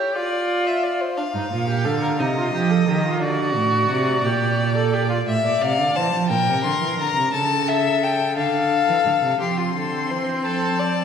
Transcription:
0.00 0.17 G4 medium
0.00 0.13 C#5 medium
0.15 1.16 F4 medium
0.15 0.68 D5 medium
0.66 0.85 E5 medium
0.83 1.02 D5 medium
1.00 1.19 C5 medium
1.17 1.24 D4 medium
1.17 2.22 F5 medium
1.34 1.41 G2 medium
1.34 1.50 D#4 medium
1.51 1.87 A#2 medium
1.51 1.67 F4 medium
1.68 1.86 G4 medium
1.85 2.21 D3 medium
1.85 2.01 A4 medium
2.02 2.09 A#4 medium
2.18 2.53 C3 medium
2.18 2.26 D#4 medium
2.18 3.22 D#5 medium
2.37 2.53 F4 medium
2.53 2.88 F3 medium
2.53 2.72 G4 medium
2.71 2.90 A4 medium
2.88 3.23 D#3 medium
2.88 3.05 G4 medium
3.05 3.24 F4 medium
3.22 3.58 D3 medium
3.22 4.26 F#4 medium
3.22 5.23 D5 medium
3.56 3.90 A2 medium
3.90 4.23 C3 medium
4.24 5.25 A#2 medium
4.24 4.75 G4 medium
4.76 4.95 A4 medium
4.93 5.09 G4 medium
5.09 5.17 F4 medium
5.27 5.44 A2 medium
5.27 5.63 E5 medium
5.44 5.51 A#2 medium
5.44 5.63 D5 medium
5.62 5.81 C3 medium
5.62 5.98 D5 medium
5.62 5.97 F5 loud
5.79 5.96 D3 medium
5.96 6.13 E3 medium
5.96 6.30 C5 medium
5.96 6.28 A5 loud
6.14 6.32 F3 medium
6.29 6.50 A#2 medium
6.29 7.32 A#4 medium
6.29 6.63 G5 loud
6.48 6.64 C3 medium
6.64 6.71 D3 medium
6.64 6.98 C6 medium
6.82 6.99 E3 medium
6.99 7.15 D3 medium
6.99 7.32 A#5 loud
7.16 7.32 C3 medium
7.33 8.38 C#3 medium
7.33 8.35 A4 medium
7.33 7.70 A5 loud
7.68 8.05 E5 loud
8.03 8.37 G5 medium
8.36 8.88 D3 medium
8.36 9.39 A4 medium
8.36 9.39 F5 loud
8.88 8.95 E3 medium
9.06 9.13 D3 medium
9.23 9.39 C3 medium
9.40 9.73 F3 medium
9.40 11.04 C4 medium
9.40 9.59 G4 medium
9.40 10.46 C6 medium
9.58 9.75 F4 medium
9.75 10.12 D3 medium
9.75 10.12 A4 medium
10.10 10.46 E3 medium
10.10 10.43 C5 medium
10.44 11.04 F3 medium
10.44 10.80 A4 medium
10.44 11.04 A5 medium
10.79 11.04 D5 medium

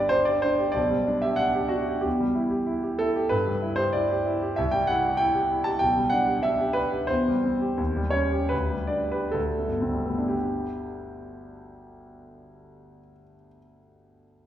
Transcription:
0.00 0.72 G1 soft
0.00 0.14 G3 soft
0.00 0.11 D4 soft
0.00 0.21 G4 soft
0.00 0.14 B4 medium
0.00 0.10 D5 medium
0.09 0.37 D4 soft
0.09 0.27 C5 medium
0.25 0.54 G4 soft
0.25 0.43 D5 medium
0.42 0.70 D4 soft
0.42 0.75 C5 medium
0.59 0.76 G4 soft
0.72 2.00 B1 soft
0.72 1.22 D5 medium
0.90 1.17 G3 soft
1.07 1.34 D4 soft
1.22 1.50 G4 soft
1.22 1.39 E5 medium
1.36 1.66 D4 soft
1.36 1.71 F#5 medium
1.55 1.82 G4 soft
1.69 1.98 D4 soft
1.69 2.03 F#4 medium
1.89 2.00 G4 soft
2.01 3.27 E2 soft
2.01 2.49 G4 medium
2.20 2.46 G3 soft
2.35 2.61 E4 soft
2.51 2.77 G4 soft
2.67 2.93 E4 soft
2.83 3.09 G4 soft
2.99 3.26 E4 soft
2.99 3.31 A4 medium
3.16 3.32 G4 soft
3.29 4.54 G2 soft
3.29 3.78 B4 medium
3.48 3.73 G3 soft
3.62 3.88 E4 soft
3.76 4.04 G4 soft
3.76 3.94 C5 medium
3.93 4.20 E4 soft
3.93 4.25 D5 medium
4.11 4.36 G4 soft
4.25 4.51 E4 soft
4.43 4.58 G4 soft
4.56 5.79 C2 medium
4.56 4.73 E5 medium
4.71 4.98 G3 soft
4.71 4.88 G5 medium
4.87 5.14 E4 soft
4.87 5.19 F#5 medium
5.05 5.30 G4 soft
5.17 5.44 E4 soft
5.17 5.65 G5 medium
5.35 5.60 G4 soft
5.51 5.76 E4 soft
5.64 5.82 G4 soft
5.64 5.81 A5 medium
5.79 7.06 B1 soft
5.79 6.12 G5 medium
5.97 6.23 G3 soft
6.10 6.38 D4 soft
6.10 6.44 F#5 medium
6.28 6.54 G4 soft
6.43 6.71 D4 soft
6.43 6.76 E5 medium
6.61 6.87 G4 soft
6.73 7.03 D4 soft
6.73 7.08 B4 medium
6.92 7.09 G4 soft
7.07 7.76 E2 soft
7.07 8.13 C5 medium
7.28 7.55 G3 soft
7.44 7.72 C4 soft
7.62 7.79 G4 soft
7.77 8.49 D#2 soft
7.96 8.26 G3 soft
8.10 8.43 C#4 soft
8.10 8.50 C#5 medium
8.32 8.51 G4 soft
8.49 9.32 D2 soft
8.49 8.91 B4 medium
8.71 9.05 G3 soft
8.87 9.26 D4 soft
8.87 9.11 D5 medium
9.12 9.36 G4 soft
9.12 9.35 B4 medium
9.32 9.79 D2 soft
9.32 10.31 A4 medium
9.59 9.99 A3 soft
9.68 12.98 G1 soft
9.80 13.10 D2 soft
9.80 10.23 C4 soft
9.93 13.23 G3 soft
10.05 10.32 A3 soft
10.05 13.35 B3 soft
10.18 13.48 D4 soft
10.28 13.58 G4 soft

